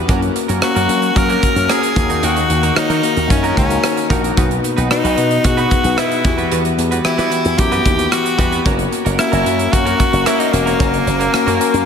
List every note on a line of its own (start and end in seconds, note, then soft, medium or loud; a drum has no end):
0.00 0.11 E4 medium
0.00 0.09 F#4 medium
0.00 0.11 G4 medium
0.00 0.11 B4 medium
0.00 0.10 C#5 medium
0.08 0.29 F#2 medium
0.08 0.44 A#3 medium
0.08 0.25 A#3 medium
0.08 0.44 C#4 medium
0.08 0.22 C#4 medium
0.08 0.44 F#4 medium
0.08 0.21 F#4 medium
0.08 0.44 A#4 medium
0.08 0.21 A#4 medium
0.08 kick loud
0.08 closed hi-hat medium
0.22 muted clean electric guitar stroke soft
0.22 closed hi-hat soft
0.35 muted clean electric guitar stroke soft
0.35 closed hi-hat medium
0.48 0.59 F#2 medium
0.48 0.61 A#3 soft
0.48 0.61 C#4 soft
0.48 0.62 F#4 medium
0.48 0.61 A#4 medium
0.48 closed hi-hat medium
0.62 0.80 A#3 medium
0.62 0.80 C#4 medium
0.62 0.80 F#4 medium
0.62 1.18 F#4 medium
0.62 0.80 A#4 medium
0.62 muted clean electric guitar stroke soft
0.62 cross-stick loud
0.62 closed hi-hat medium
0.75 0.86 F#2 medium
0.75 0.87 A#3 medium
0.75 0.88 C#4 medium
0.75 0.88 F#4 medium
0.75 0.89 A#4 medium
0.75 closed hi-hat medium
0.88 1.09 F#3 medium
0.88 1.06 A#3 medium
0.88 1.07 C#4 medium
0.88 1.07 F#4 medium
0.88 1.07 A#4 medium
0.88 closed hi-hat medium
1.02 muted clean electric guitar stroke soft
1.02 closed hi-hat soft
1.15 1.36 F#3 loud
1.15 1.42 A#3 medium
1.15 1.42 C#4 medium
1.15 1.42 F#4 medium
1.15 1.43 A#4 medium
1.15 1.72 A#4 loud
1.15 muted clean electric guitar stroke soft
1.15 kick medium
1.15 closed hi-hat medium
1.29 1.41 A#3 medium
1.29 1.42 C#4 medium
1.29 1.42 F#4 medium
1.29 1.42 A#4 medium
1.29 closed hi-hat soft
1.42 muted clean electric guitar stroke soft
1.42 kick medium
1.42 closed hi-hat medium
1.55 1.66 F#2 medium
1.55 1.82 A#3 medium
1.55 1.82 C#4 medium
1.55 1.83 F#4 medium
1.55 1.83 C#5 medium
1.55 muted clean electric guitar stroke soft
1.55 closed hi-hat medium
1.69 1.86 A#3 medium
1.69 1.83 C#4 medium
1.69 1.82 F#4 medium
1.69 2.26 G#4 loud
1.69 1.82 A#4 medium
1.69 cross-stick loud
1.69 closed hi-hat medium
1.83 muted clean electric guitar stroke soft
1.83 closed hi-hat medium
1.95 2.16 D#2 medium
1.95 2.72 D#3 medium
1.95 2.60 A#3 medium
1.95 2.60 D#4 medium
1.95 2.60 F#4 medium
1.95 2.61 A#4 medium
1.95 muted clean electric guitar stroke soft
1.95 kick medium
1.95 closed hi-hat medium
2.10 2.21 A#3 soft
2.10 2.22 D#4 medium
2.10 2.23 F#4 soft
2.10 2.22 A#4 medium
2.10 closed hi-hat soft
2.23 2.43 D#2 loud
2.23 2.39 A#3 medium
2.23 2.36 D#4 medium
2.23 2.36 F#4 medium
2.23 2.79 F#4 medium
2.23 2.35 A#4 medium
2.23 closed hi-hat medium
2.36 muted clean electric guitar stroke soft
2.36 closed hi-hat soft
2.50 2.70 D#2 medium
2.50 muted clean electric guitar stroke soft
2.50 closed hi-hat medium
2.63 2.75 A#3 soft
2.63 2.76 D#4 soft
2.63 2.76 F#4 soft
2.63 2.76 A#4 medium
2.63 closed hi-hat medium
2.75 2.94 A#3 medium
2.75 2.94 D#4 medium
2.75 3.30 D#4 medium
2.75 2.94 F#4 medium
2.75 2.94 C#5 medium
2.75 muted slap bass stroke soft
2.75 cross-stick loud
2.75 closed hi-hat medium
2.90 3.00 D#3 medium
2.90 3.02 A#3 medium
2.90 3.02 D#4 medium
2.90 3.03 F#4 medium
2.90 3.03 A#4 medium
2.90 closed hi-hat medium
3.02 3.21 A#3 medium
3.02 3.21 D#4 medium
3.02 3.21 F#4 medium
3.02 3.21 A#4 medium
3.02 muted clean electric guitar stroke soft
3.02 closed hi-hat medium
3.17 3.27 D#2 medium
3.17 muted clean electric guitar stroke soft
3.17 closed hi-hat soft
3.29 3.50 F#2 medium
3.29 3.56 A#3 medium
3.29 3.55 C#4 medium
3.29 3.56 D#4 medium
3.29 3.57 F#4 medium
3.29 3.57 A#4 medium
3.29 muted clean electric guitar stroke soft
3.29 kick medium
3.29 closed hi-hat medium
3.43 3.55 A#3 medium
3.43 3.56 D#4 medium
3.43 3.56 F#4 medium
3.43 3.57 A#4 medium
3.43 closed hi-hat soft
3.57 3.77 C#2 medium
3.57 4.07 C#4 medium
3.57 muted clean electric guitar stroke soft
3.57 kick medium
3.57 closed hi-hat medium
3.69 3.96 A#3 medium
3.69 3.97 D#4 medium
3.69 3.97 F#4 medium
3.69 3.97 A#4 medium
3.69 muted clean electric guitar stroke soft
3.69 closed hi-hat medium
3.83 muted clean electric guitar stroke soft
3.83 cross-stick loud
3.83 closed hi-hat medium
3.97 muted clean electric guitar stroke soft
3.97 closed hi-hat soft
4.10 4.30 A#1 medium
4.10 4.24 A#3 medium
4.10 4.28 A#3 medium
4.10 4.28 D#4 medium
4.10 4.23 D#4 medium
4.10 4.28 F#4 medium
4.10 4.23 F#4 medium
4.10 4.29 A#4 medium
4.10 4.22 A#4 medium
4.10 kick medium
4.10 closed hi-hat medium
4.23 4.36 A#3 soft
4.23 4.36 D#4 soft
4.23 4.37 F#4 medium
4.23 4.36 A#4 medium
4.23 closed hi-hat soft
4.36 4.57 B1 medium
4.36 5.14 B2 medium
4.36 4.53 B3 medium
4.36 4.72 B3 medium
4.36 4.73 D#4 medium
4.36 4.50 D#4 medium
4.36 4.73 F#4 medium
4.36 4.49 F#4 medium
4.36 4.73 B4 medium
4.36 4.49 B4 medium
4.36 kick loud
4.36 closed hi-hat medium
4.50 muted clean electric guitar stroke soft
4.50 closed hi-hat soft
4.63 muted clean electric guitar stroke soft
4.63 closed hi-hat medium
4.77 4.88 B1 medium
4.77 4.89 B3 soft
4.77 4.90 D#4 medium
4.77 4.90 F#4 medium
4.77 4.90 B4 medium
4.77 closed hi-hat medium
4.90 5.08 B3 medium
4.90 5.08 D#4 medium
4.90 5.47 D#4 medium
4.90 5.09 F#4 medium
4.90 5.09 B4 medium
4.90 cross-stick loud
4.90 closed hi-hat medium
5.04 5.14 B1 medium
5.04 5.16 B3 medium
5.04 5.16 D#4 medium
5.04 5.17 F#4 medium
5.04 5.17 B4 medium
5.04 closed hi-hat medium
5.17 5.38 B2 medium
5.17 5.35 B3 medium
5.17 5.35 D#4 medium
5.17 5.35 F#4 medium
5.17 5.36 B4 medium
5.17 muted clean electric guitar stroke soft
5.17 closed hi-hat medium
5.31 muted clean electric guitar stroke soft
5.31 closed hi-hat soft
5.44 5.65 B2 medium
5.44 5.71 B3 medium
5.44 5.71 D#4 medium
5.44 5.71 F#4 medium
5.44 6.00 F#4 loud
5.44 5.71 G#4 medium
5.44 muted clean electric guitar stroke soft
5.44 kick medium
5.44 closed hi-hat medium
5.57 5.70 B3 medium
5.57 5.70 D#4 medium
5.57 5.70 F#4 medium
5.57 5.71 B4 medium
5.57 closed hi-hat soft
5.71 muted clean electric guitar stroke soft
5.71 kick medium
5.71 closed hi-hat medium
5.84 5.94 B1 medium
5.84 6.11 B3 medium
5.84 6.11 D#4 medium
5.84 6.11 F#4 medium
5.84 6.12 B4 medium
5.84 muted clean electric guitar stroke soft
5.84 closed hi-hat medium
5.97 6.14 B3 medium
5.97 6.11 D#4 medium
5.97 6.52 E4 medium
5.97 6.10 F#4 medium
5.97 6.10 B4 medium
5.97 cross-stick loud
5.97 closed hi-hat medium
6.11 muted clean electric guitar stroke soft
6.11 closed hi-hat soft
6.24 6.45 E2 medium
6.24 7.01 E3 medium
6.24 6.89 B3 medium
6.24 6.89 E4 medium
6.24 6.89 F#4 medium
6.24 6.89 G4 medium
6.24 muted clean electric guitar stroke soft
6.24 kick loud
6.24 closed hi-hat medium
6.38 6.50 G3 soft
6.38 6.50 B3 medium
6.38 6.51 F#4 medium
6.38 6.51 B4 medium
6.38 closed hi-hat soft
6.51 6.72 E2 loud
6.51 6.68 G3 medium
6.51 6.65 B3 medium
6.51 6.64 F#4 medium
6.51 6.63 B4 medium
6.51 closed hi-hat medium
6.65 muted clean electric guitar stroke soft
6.65 closed hi-hat soft
6.78 6.98 E2 medium
6.78 muted clean electric guitar stroke soft
6.78 closed hi-hat medium
6.91 7.04 G3 soft
6.91 7.04 B3 medium
6.91 7.05 F#4 soft
6.91 7.04 B4 medium
6.91 closed hi-hat medium
7.04 7.22 B3 medium
7.04 7.23 E4 medium
7.04 7.60 E4 medium
7.04 7.23 F#4 medium
7.04 7.23 G4 medium
7.04 muted slap bass stroke soft
7.04 cross-stick loud
7.04 closed hi-hat medium
7.18 7.29 E3 medium
7.18 7.30 G3 medium
7.18 7.31 B3 medium
7.18 7.31 F#4 medium
7.18 7.31 B4 medium
7.18 closed hi-hat medium
7.31 7.49 B3 medium
7.31 7.49 E4 medium
7.31 7.50 F#4 medium
7.31 7.50 G4 medium
7.31 muted clean electric guitar stroke soft
7.31 closed hi-hat medium
7.45 7.55 E2 medium
7.45 muted clean electric guitar stroke soft
7.45 closed hi-hat soft
7.58 7.79 F#2 medium
7.58 7.85 B3 medium
7.58 7.85 E4 medium
7.58 7.85 F#4 medium
7.58 8.13 G4 loud
7.58 7.85 G4 medium
7.58 muted clean electric guitar stroke soft
7.58 kick medium
7.58 closed hi-hat loud
7.72 7.84 G3 medium
7.72 7.84 B3 medium
7.72 7.85 F#4 medium
7.72 7.85 B4 medium
7.72 closed hi-hat soft
7.85 8.06 D#2 medium
7.85 kick medium
7.85 closed hi-hat medium
7.98 8.25 B3 medium
7.98 8.25 E4 medium
7.98 8.25 F#4 medium
7.98 8.26 G4 medium
7.98 muted clean electric guitar stroke soft
7.98 closed hi-hat medium
8.11 8.65 F#4 medium
8.11 muted clean electric guitar stroke soft
8.11 cross-stick loud
8.11 closed hi-hat medium
8.25 muted clean electric guitar stroke soft
8.25 closed hi-hat medium
8.38 8.59 E2 medium
8.38 8.52 G3 medium
8.38 8.56 B3 medium
8.38 8.52 B3 medium
8.38 8.56 E4 medium
8.38 8.57 F#4 medium
8.38 8.51 F#4 medium
8.38 8.57 G4 medium
8.38 8.50 B4 medium
8.38 kick medium
8.38 closed hi-hat medium
8.52 8.65 G3 soft
8.52 8.65 B3 medium
8.52 8.65 F#4 medium
8.52 8.65 B4 medium
8.52 closed hi-hat soft
8.65 8.86 F#1 loud
8.65 9.01 A#3 medium
8.65 8.82 A#3 medium
8.65 9.01 C#4 medium
8.65 8.79 C#4 medium
8.65 9.01 F#4 medium
8.65 8.78 F#4 medium
8.65 9.01 A#4 medium
8.65 8.78 A#4 medium
8.65 kick loud
8.65 closed hi-hat medium
8.79 muted clean electric guitar stroke soft
8.79 closed hi-hat soft
8.92 muted clean electric guitar stroke soft
8.92 closed hi-hat medium
9.05 9.16 F#1 medium
9.05 9.18 A#3 soft
9.05 9.18 C#4 medium
9.05 9.19 F#4 medium
9.05 9.18 A#4 medium
9.05 closed hi-hat medium
9.18 9.37 A#3 medium
9.18 9.37 C#4 medium
9.18 9.74 E4 loud
9.18 9.37 F#4 medium
9.18 9.37 A#4 medium
9.18 muted clean electric guitar stroke soft
9.18 cross-stick loud
9.18 closed hi-hat medium
9.32 9.43 F#1 medium
9.32 9.44 A#3 medium
9.32 9.45 C#4 medium
9.32 9.45 F#4 medium
9.32 9.46 A#4 medium
9.32 closed hi-hat medium
9.45 9.66 F#2 medium
9.45 9.63 A#3 medium
9.45 9.64 C#4 medium
9.45 9.64 F#4 medium
9.45 9.64 A#4 medium
9.45 muted clean electric guitar stroke soft
9.45 closed hi-hat medium
9.59 muted clean electric guitar stroke soft
9.59 closed hi-hat soft
9.72 9.93 F#2 medium
9.72 9.99 A#3 medium
9.72 9.99 C#4 medium
9.72 10.28 F#4 loud
9.72 9.99 F#4 medium
9.72 10.00 A#4 medium
9.72 muted clean electric guitar stroke soft
9.72 kick medium
9.72 closed hi-hat medium
9.86 9.98 A#3 medium
9.86 9.99 C#4 medium
9.86 9.99 F#4 medium
9.86 9.99 A#4 medium
9.86 closed hi-hat soft
10.00 muted clean electric guitar stroke soft
10.00 kick medium
10.00 closed hi-hat medium
10.12 10.23 F#1 medium
10.12 10.39 A#3 medium
10.12 10.40 C#4 medium
10.12 10.40 F#4 medium
10.12 10.40 A#4 medium
10.12 muted clean electric guitar stroke soft
10.12 closed hi-hat medium
10.26 10.43 A#3 medium
10.26 10.39 C#4 medium
10.26 10.41 E4 loud
10.26 10.39 F#4 medium
10.26 10.38 A#4 medium
10.26 cross-stick medium
10.26 closed hi-hat medium
10.39 10.54 D#4 medium
10.39 muted clean electric guitar stroke soft
10.39 closed hi-hat medium
10.52 10.73 E1 medium
10.52 11.85 A#3 medium
10.52 10.71 A#3 medium
10.52 10.71 C#4 medium
10.52 10.71 F#4 medium
10.52 10.71 A#4 medium
10.52 muted clean electric guitar stroke soft
10.52 closed hi-hat medium
10.66 10.78 A#3 soft
10.66 10.79 C#4 medium
10.66 10.79 F#4 soft
10.66 10.79 A#4 medium
10.66 closed hi-hat soft
10.79 11.00 F#1 loud
10.79 11.15 A#3 medium
10.79 10.96 A#3 medium
10.79 11.15 C#4 medium
10.79 10.93 C#4 medium
10.79 11.16 F#4 medium
10.79 10.92 F#4 medium
10.79 11.16 A#4 medium
10.79 10.92 A#4 medium
10.79 kick loud
10.79 closed hi-hat medium
10.93 muted clean electric guitar stroke soft
10.93 closed hi-hat soft
11.07 11.27 F#1 medium
11.07 muted clean electric guitar stroke soft
11.07 closed hi-hat medium
11.20 11.32 A#3 soft
11.20 11.32 C#4 soft
11.20 11.33 F#4 soft
11.20 11.33 A#4 medium
11.20 closed hi-hat medium
11.33 11.51 A#3 medium
11.33 11.51 C#4 medium
11.33 11.51 F#4 medium
11.33 11.52 A#4 medium
11.33 muted clean electric guitar stroke soft
11.33 muted slap bass stroke soft
11.33 cross-stick loud
11.33 closed hi-hat medium
11.46 11.57 F#2 medium
11.46 11.59 A#3 medium
11.46 11.59 C#4 medium
11.46 11.60 F#4 medium
11.46 11.60 A#4 medium
11.46 closed hi-hat medium
11.60 11.78 A#3 medium
11.60 11.78 C#4 medium
11.60 11.78 F#4 medium
11.60 11.78 A#4 medium
11.60 muted clean electric guitar stroke soft
11.60 closed hi-hat medium
11.73 11.84 F#2 medium
11.73 muted clean electric guitar stroke soft
11.73 closed hi-hat soft